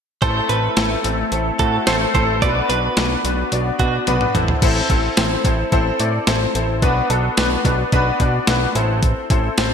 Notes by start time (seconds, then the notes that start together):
0.22 A1 A3 C4 E4 A4 C5, kick, closed hi-hat
0.49 A1 A3 C4 E4 A4 B4, closed hi-hat
0.77 A1 A3 C4 E4 A4, snare, closed hi-hat
1.04 A1 A3 C4 E4 A4, closed hi-hat
1.32 A1 A3 C4 E4 A4, closed hi-hat
1.59 A2 A3 C4 E4 F#4 A4, kick, closed hi-hat
1.87 A1 A3 C4 E4 A4 C5, snare, closed hi-hat
2.14 A1 A3 C4 E4 A4 C5, kick, closed hi-hat
2.42 B1 B3 D4 F#4 B4 D5, kick, closed hi-hat
2.69 B1 B3 D4 F#4 B4, closed hi-hat
2.97 B1 B3 D4 F#4 B4, snare, closed hi-hat
3.24 B1 B3 D4 F#4 B4, closed hi-hat
3.52 B1 B3 D4 F#4 D5, closed hi-hat
3.79 B2 B3 D4 F#4 B4, kick, closed hi-hat
4.07 B1 B3 D4 F#4 B4, closed hi-hat, high tom
4.21 mid tom
4.35 A1 C4 E4 A4 C5, closed hi-hat, mid tom
4.48 floor tom
4.62 A1 C4 E4 A4 C5, kick, closed hi-hat, crash
4.90 A1 C4 E4 A4 C5, kick, closed hi-hat
5.17 A1 C4 E4 A4 C5, snare, closed hi-hat
5.44 A1 C4 E4 A4 C5, kick, closed hi-hat
5.72 A1 C4 E4 A4 C5, kick, closed hi-hat
6.00 A2 C4 E4 A4 D5, closed hi-hat
6.27 A1 C4 E4 A4 C5, snare, closed hi-hat
6.55 A1 C4 E4 A4 C5, closed hi-hat
6.82 B1 B3 D4 F#4 B4, kick, closed hi-hat
7.10 B1 B3 D4 F#4 A4, closed hi-hat
7.37 B1 B3 D4 F#4 B4, snare, closed hi-hat
7.65 B1 B3 D4 F#4 B4, kick, closed hi-hat
7.92 B1 B3 D4 F#4 B4, kick, closed hi-hat
8.20 B2 B3 D4 F#4 D5, kick, closed hi-hat
8.47 B1 B3 D4 F#4 B4, snare, closed hi-hat
8.75 A1 C4 E4 A4 C5, closed hi-hat
9.03 kick, closed hi-hat
9.30 A1 C4 E4 A4 C5, kick, closed hi-hat
9.58 A1 C4 E4 A4 C5, snare, closed hi-hat